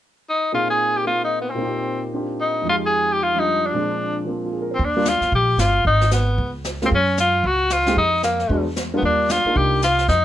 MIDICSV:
0, 0, Header, 1, 6, 480
1, 0, Start_track
1, 0, Key_signature, -3, "major"
1, 0, Tempo, 265487
1, 958, Time_signature, 4, 2, 24, 8
1, 18530, End_track
2, 0, Start_track
2, 0, Title_t, "Tenor saxophone"
2, 0, Program_c, 0, 66
2, 537, Note_on_c, 0, 63, 71
2, 957, Note_off_c, 0, 63, 0
2, 983, Note_on_c, 0, 65, 79
2, 1245, Note_off_c, 0, 65, 0
2, 1269, Note_on_c, 0, 68, 74
2, 1757, Note_on_c, 0, 67, 69
2, 1784, Note_off_c, 0, 68, 0
2, 1922, Note_off_c, 0, 67, 0
2, 1932, Note_on_c, 0, 65, 72
2, 2202, Note_off_c, 0, 65, 0
2, 2252, Note_on_c, 0, 63, 65
2, 2540, Note_off_c, 0, 63, 0
2, 2557, Note_on_c, 0, 59, 45
2, 2714, Note_on_c, 0, 60, 56
2, 2741, Note_off_c, 0, 59, 0
2, 3670, Note_off_c, 0, 60, 0
2, 4350, Note_on_c, 0, 63, 70
2, 4790, Note_off_c, 0, 63, 0
2, 4867, Note_on_c, 0, 65, 80
2, 4988, Note_off_c, 0, 65, 0
2, 5165, Note_on_c, 0, 68, 83
2, 5646, Note_on_c, 0, 67, 76
2, 5673, Note_off_c, 0, 68, 0
2, 5839, Note_on_c, 0, 65, 76
2, 5866, Note_off_c, 0, 67, 0
2, 6136, Note_on_c, 0, 63, 73
2, 6163, Note_off_c, 0, 65, 0
2, 6610, Note_on_c, 0, 62, 64
2, 6637, Note_off_c, 0, 63, 0
2, 7541, Note_off_c, 0, 62, 0
2, 8581, Note_on_c, 0, 60, 61
2, 8756, Note_on_c, 0, 62, 78
2, 8783, Note_off_c, 0, 60, 0
2, 9201, Note_on_c, 0, 65, 77
2, 9228, Note_off_c, 0, 62, 0
2, 9648, Note_off_c, 0, 65, 0
2, 9671, Note_on_c, 0, 67, 82
2, 10117, Note_on_c, 0, 65, 78
2, 10144, Note_off_c, 0, 67, 0
2, 10586, Note_off_c, 0, 65, 0
2, 10610, Note_on_c, 0, 63, 86
2, 11039, Note_off_c, 0, 63, 0
2, 11082, Note_on_c, 0, 59, 62
2, 11786, Note_off_c, 0, 59, 0
2, 12397, Note_on_c, 0, 60, 72
2, 12460, Note_off_c, 0, 60, 0
2, 12557, Note_on_c, 0, 61, 90
2, 12971, Note_off_c, 0, 61, 0
2, 13015, Note_on_c, 0, 65, 84
2, 13491, Note_on_c, 0, 66, 84
2, 13518, Note_off_c, 0, 65, 0
2, 13960, Note_on_c, 0, 65, 83
2, 13987, Note_off_c, 0, 66, 0
2, 14416, Note_off_c, 0, 65, 0
2, 14427, Note_on_c, 0, 63, 86
2, 14862, Note_off_c, 0, 63, 0
2, 14899, Note_on_c, 0, 58, 64
2, 15609, Note_off_c, 0, 58, 0
2, 16222, Note_on_c, 0, 59, 63
2, 16355, Note_off_c, 0, 59, 0
2, 16367, Note_on_c, 0, 62, 85
2, 16844, Note_on_c, 0, 65, 79
2, 16871, Note_off_c, 0, 62, 0
2, 17297, Note_on_c, 0, 67, 88
2, 17324, Note_off_c, 0, 65, 0
2, 17766, Note_off_c, 0, 67, 0
2, 17782, Note_on_c, 0, 65, 82
2, 18216, Note_off_c, 0, 65, 0
2, 18239, Note_on_c, 0, 63, 85
2, 18530, Note_off_c, 0, 63, 0
2, 18530, End_track
3, 0, Start_track
3, 0, Title_t, "Grand piano"
3, 0, Program_c, 1, 0
3, 947, Note_on_c, 1, 58, 38
3, 950, Note_on_c, 1, 46, 41
3, 959, Note_on_c, 1, 60, 39
3, 966, Note_on_c, 1, 68, 47
3, 975, Note_on_c, 1, 63, 38
3, 1869, Note_off_c, 1, 58, 0
3, 1896, Note_on_c, 1, 58, 36
3, 1902, Note_off_c, 1, 60, 0
3, 1929, Note_on_c, 1, 60, 33
3, 1954, Note_on_c, 1, 65, 39
3, 2765, Note_off_c, 1, 46, 0
3, 2792, Note_on_c, 1, 46, 45
3, 2798, Note_off_c, 1, 58, 0
3, 2825, Note_on_c, 1, 58, 41
3, 2831, Note_off_c, 1, 60, 0
3, 2858, Note_on_c, 1, 60, 42
3, 2879, Note_off_c, 1, 63, 0
3, 2891, Note_off_c, 1, 68, 0
3, 2903, Note_off_c, 1, 65, 0
3, 2906, Note_on_c, 1, 63, 43
3, 2945, Note_on_c, 1, 65, 43
3, 2984, Note_on_c, 1, 67, 48
3, 3838, Note_off_c, 1, 60, 0
3, 3854, Note_off_c, 1, 65, 0
3, 3865, Note_on_c, 1, 60, 37
3, 3867, Note_on_c, 1, 62, 33
3, 3881, Note_on_c, 1, 65, 33
3, 3882, Note_off_c, 1, 67, 0
3, 3909, Note_on_c, 1, 67, 40
3, 4732, Note_on_c, 1, 41, 41
3, 4766, Note_off_c, 1, 46, 0
3, 4783, Note_off_c, 1, 58, 0
3, 4791, Note_on_c, 1, 53, 38
3, 4821, Note_off_c, 1, 60, 0
3, 4822, Note_off_c, 1, 62, 0
3, 4823, Note_off_c, 1, 63, 0
3, 4826, Note_on_c, 1, 56, 38
3, 4829, Note_off_c, 1, 65, 0
3, 4843, Note_off_c, 1, 67, 0
3, 4889, Note_on_c, 1, 63, 40
3, 4941, Note_on_c, 1, 67, 46
3, 6024, Note_off_c, 1, 53, 0
3, 6051, Note_on_c, 1, 53, 40
3, 6073, Note_on_c, 1, 55, 35
3, 6079, Note_on_c, 1, 62, 36
3, 6097, Note_on_c, 1, 65, 42
3, 6697, Note_off_c, 1, 41, 0
3, 6724, Note_off_c, 1, 53, 0
3, 6731, Note_off_c, 1, 56, 0
3, 6732, Note_off_c, 1, 62, 0
3, 6736, Note_on_c, 1, 46, 47
3, 6740, Note_off_c, 1, 55, 0
3, 6751, Note_off_c, 1, 65, 0
3, 6751, Note_on_c, 1, 53, 42
3, 6758, Note_on_c, 1, 56, 43
3, 6759, Note_on_c, 1, 62, 49
3, 6768, Note_on_c, 1, 60, 39
3, 6775, Note_off_c, 1, 63, 0
3, 6801, Note_off_c, 1, 67, 0
3, 7659, Note_off_c, 1, 53, 0
3, 7687, Note_on_c, 1, 53, 34
3, 7718, Note_off_c, 1, 60, 0
3, 7721, Note_on_c, 1, 58, 33
3, 7745, Note_on_c, 1, 60, 39
3, 8062, Note_on_c, 1, 65, 37
3, 8175, Note_on_c, 1, 68, 39
3, 8281, Note_off_c, 1, 65, 0
3, 8352, Note_on_c, 1, 70, 40
3, 8449, Note_off_c, 1, 68, 0
3, 8517, Note_on_c, 1, 72, 41
3, 8585, Note_off_c, 1, 70, 0
3, 8652, Note_off_c, 1, 53, 0
3, 8657, Note_off_c, 1, 46, 0
3, 8668, Note_off_c, 1, 56, 0
3, 8669, Note_off_c, 1, 62, 0
3, 8670, Note_off_c, 1, 58, 0
3, 8681, Note_off_c, 1, 60, 0
3, 8748, Note_off_c, 1, 72, 0
3, 8979, Note_on_c, 1, 55, 58
3, 8979, Note_on_c, 1, 58, 53
3, 8989, Note_on_c, 1, 62, 55
3, 8995, Note_on_c, 1, 65, 65
3, 9133, Note_off_c, 1, 55, 0
3, 9133, Note_off_c, 1, 58, 0
3, 9138, Note_off_c, 1, 62, 0
3, 9141, Note_off_c, 1, 65, 0
3, 12329, Note_on_c, 1, 58, 52
3, 12342, Note_on_c, 1, 56, 56
3, 12354, Note_on_c, 1, 65, 64
3, 12356, Note_on_c, 1, 60, 52
3, 12485, Note_off_c, 1, 58, 0
3, 12491, Note_off_c, 1, 56, 0
3, 12497, Note_off_c, 1, 65, 0
3, 12499, Note_off_c, 1, 60, 0
3, 14227, Note_on_c, 1, 60, 56
3, 14233, Note_on_c, 1, 56, 64
3, 14237, Note_on_c, 1, 63, 58
3, 14244, Note_on_c, 1, 67, 66
3, 14392, Note_off_c, 1, 60, 0
3, 14394, Note_off_c, 1, 56, 0
3, 14396, Note_off_c, 1, 63, 0
3, 14400, Note_off_c, 1, 67, 0
3, 15366, Note_on_c, 1, 59, 47
3, 15373, Note_on_c, 1, 56, 51
3, 15381, Note_on_c, 1, 62, 50
3, 15389, Note_on_c, 1, 66, 55
3, 15628, Note_off_c, 1, 59, 0
3, 15631, Note_off_c, 1, 56, 0
3, 15635, Note_off_c, 1, 62, 0
3, 15639, Note_off_c, 1, 66, 0
3, 16159, Note_on_c, 1, 58, 51
3, 16160, Note_on_c, 1, 55, 55
3, 16162, Note_on_c, 1, 62, 52
3, 16168, Note_on_c, 1, 65, 60
3, 16775, Note_off_c, 1, 55, 0
3, 16775, Note_off_c, 1, 58, 0
3, 16776, Note_off_c, 1, 62, 0
3, 16779, Note_off_c, 1, 65, 0
3, 17116, Note_on_c, 1, 58, 49
3, 17131, Note_on_c, 1, 63, 46
3, 17134, Note_on_c, 1, 62, 43
3, 17143, Note_on_c, 1, 65, 52
3, 17732, Note_off_c, 1, 58, 0
3, 17739, Note_off_c, 1, 63, 0
3, 17741, Note_off_c, 1, 62, 0
3, 17746, Note_off_c, 1, 65, 0
3, 18530, End_track
4, 0, Start_track
4, 0, Title_t, "Upright bass"
4, 0, Program_c, 2, 32
4, 8656, Note_on_c, 2, 39, 69
4, 9375, Note_off_c, 2, 39, 0
4, 9419, Note_on_c, 2, 40, 57
4, 9598, Note_off_c, 2, 40, 0
4, 9616, Note_on_c, 2, 34, 74
4, 10062, Note_off_c, 2, 34, 0
4, 10077, Note_on_c, 2, 31, 69
4, 10531, Note_off_c, 2, 31, 0
4, 10570, Note_on_c, 2, 32, 70
4, 11482, Note_off_c, 2, 32, 0
4, 11533, Note_on_c, 2, 37, 71
4, 12443, Note_off_c, 2, 37, 0
4, 12495, Note_on_c, 2, 42, 72
4, 13403, Note_off_c, 2, 42, 0
4, 13442, Note_on_c, 2, 37, 74
4, 14355, Note_off_c, 2, 37, 0
4, 14397, Note_on_c, 2, 41, 71
4, 15311, Note_off_c, 2, 41, 0
4, 15353, Note_on_c, 2, 40, 71
4, 16268, Note_off_c, 2, 40, 0
4, 16307, Note_on_c, 2, 39, 73
4, 17030, Note_off_c, 2, 39, 0
4, 17274, Note_on_c, 2, 36, 71
4, 18186, Note_off_c, 2, 36, 0
4, 18232, Note_on_c, 2, 41, 70
4, 18530, Note_off_c, 2, 41, 0
4, 18530, End_track
5, 0, Start_track
5, 0, Title_t, "Muted upright bass strokes"
5, 17077, Note_on_c, 9, 29, 34
5, 17258, Note_off_c, 9, 29, 0
5, 18530, End_track
6, 0, Start_track
6, 0, Title_t, "Drums"
6, 8664, Note_on_c, 9, 25, 38
6, 8665, Note_on_c, 9, 36, 28
6, 8846, Note_off_c, 9, 36, 0
6, 9135, Note_on_c, 9, 44, 47
6, 9143, Note_on_c, 9, 38, 50
6, 9316, Note_off_c, 9, 44, 0
6, 9323, Note_off_c, 9, 38, 0
6, 9430, Note_on_c, 9, 38, 32
6, 9611, Note_off_c, 9, 38, 0
6, 9621, Note_on_c, 9, 36, 31
6, 9624, Note_off_c, 9, 25, 0
6, 9624, Note_on_c, 9, 25, 39
6, 9802, Note_off_c, 9, 36, 0
6, 10097, Note_on_c, 9, 44, 48
6, 10104, Note_on_c, 9, 38, 50
6, 10278, Note_off_c, 9, 44, 0
6, 10285, Note_off_c, 9, 38, 0
6, 10577, Note_on_c, 9, 36, 28
6, 10578, Note_off_c, 9, 25, 0
6, 10578, Note_on_c, 9, 25, 38
6, 10758, Note_off_c, 9, 36, 0
6, 10870, Note_on_c, 9, 38, 40
6, 11048, Note_on_c, 9, 44, 50
6, 11051, Note_off_c, 9, 38, 0
6, 11055, Note_on_c, 9, 38, 50
6, 11229, Note_off_c, 9, 44, 0
6, 11236, Note_off_c, 9, 38, 0
6, 11539, Note_on_c, 9, 36, 31
6, 11545, Note_off_c, 9, 25, 0
6, 11545, Note_on_c, 9, 25, 45
6, 11720, Note_off_c, 9, 36, 0
6, 12011, Note_on_c, 9, 44, 46
6, 12018, Note_on_c, 9, 38, 50
6, 12192, Note_off_c, 9, 44, 0
6, 12199, Note_off_c, 9, 38, 0
6, 12327, Note_on_c, 9, 38, 33
6, 12499, Note_on_c, 9, 36, 30
6, 12504, Note_off_c, 9, 25, 0
6, 12504, Note_on_c, 9, 25, 45
6, 12508, Note_off_c, 9, 38, 0
6, 12680, Note_off_c, 9, 36, 0
6, 12968, Note_on_c, 9, 44, 47
6, 12975, Note_on_c, 9, 38, 53
6, 13148, Note_off_c, 9, 44, 0
6, 13156, Note_off_c, 9, 38, 0
6, 13450, Note_off_c, 9, 25, 0
6, 13450, Note_on_c, 9, 25, 46
6, 13452, Note_on_c, 9, 36, 30
6, 13633, Note_off_c, 9, 36, 0
6, 13919, Note_on_c, 9, 44, 44
6, 13926, Note_on_c, 9, 38, 52
6, 14100, Note_off_c, 9, 44, 0
6, 14107, Note_off_c, 9, 38, 0
6, 14216, Note_on_c, 9, 38, 34
6, 14397, Note_off_c, 9, 38, 0
6, 14402, Note_off_c, 9, 25, 0
6, 14402, Note_on_c, 9, 25, 38
6, 14407, Note_on_c, 9, 36, 28
6, 14587, Note_off_c, 9, 36, 0
6, 14878, Note_on_c, 9, 44, 55
6, 14886, Note_on_c, 9, 38, 53
6, 15059, Note_off_c, 9, 44, 0
6, 15066, Note_off_c, 9, 38, 0
6, 15178, Note_on_c, 9, 38, 33
6, 15359, Note_off_c, 9, 38, 0
6, 15362, Note_off_c, 9, 25, 0
6, 15362, Note_on_c, 9, 25, 41
6, 15365, Note_on_c, 9, 36, 28
6, 15546, Note_off_c, 9, 36, 0
6, 15839, Note_on_c, 9, 44, 52
6, 15846, Note_on_c, 9, 38, 48
6, 16020, Note_off_c, 9, 44, 0
6, 16027, Note_off_c, 9, 38, 0
6, 16323, Note_on_c, 9, 36, 28
6, 16327, Note_off_c, 9, 25, 0
6, 16327, Note_on_c, 9, 25, 38
6, 16504, Note_off_c, 9, 36, 0
6, 16800, Note_on_c, 9, 44, 44
6, 16807, Note_on_c, 9, 38, 55
6, 16981, Note_off_c, 9, 44, 0
6, 16988, Note_off_c, 9, 38, 0
6, 17281, Note_off_c, 9, 25, 0
6, 17281, Note_on_c, 9, 25, 45
6, 17282, Note_on_c, 9, 36, 29
6, 17463, Note_off_c, 9, 36, 0
6, 17757, Note_on_c, 9, 44, 43
6, 17764, Note_on_c, 9, 38, 54
6, 17938, Note_off_c, 9, 44, 0
6, 17945, Note_off_c, 9, 38, 0
6, 18052, Note_on_c, 9, 38, 36
6, 18230, Note_off_c, 9, 25, 0
6, 18230, Note_off_c, 9, 38, 0
6, 18230, Note_on_c, 9, 25, 43
6, 18230, Note_on_c, 9, 38, 32
6, 18235, Note_on_c, 9, 36, 29
6, 18410, Note_off_c, 9, 38, 0
6, 18416, Note_off_c, 9, 36, 0
6, 18530, Note_off_c, 9, 25, 0
6, 18530, End_track
0, 0, End_of_file